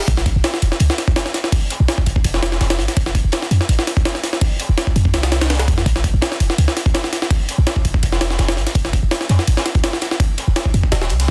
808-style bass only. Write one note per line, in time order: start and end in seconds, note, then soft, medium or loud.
0.08 0.34 A#1 loud
0.36 0.43 A#1 medium
0.62 0.71 F1 medium
0.80 0.89 C#2 medium
1.80 1.88 A#1 medium
2.07 2.15 F1 medium
2.25 2.60 F1 medium
2.61 2.80 F1 loud
2.79 2.88 G#1 medium
2.97 3.23 F1 loud
3.24 3.32 F1 medium
3.51 3.60 F2 medium
3.69 3.78 G#1 medium
4.69 4.77 F1 medium
4.96 5.15 F2 medium
5.14 5.69 C2 medium
5.68 5.84 F2 medium
5.86 6.12 A#1 loud
6.14 6.22 A#1 medium
6.40 6.49 F1 medium
6.58 6.67 C#2 medium
7.58 7.66 A#1 medium
7.85 7.94 F1 medium
8.03 8.38 F1 medium
8.39 8.59 F1 loud
8.57 8.66 G#1 medium
8.75 9.01 F1 loud
9.03 9.11 F1 medium
9.30 9.38 F2 medium
9.48 9.56 G#1 medium
10.48 10.55 F1 medium
10.74 10.83 F2 medium
10.92 11.12 D#1 medium
11.10 11.28 C2 loud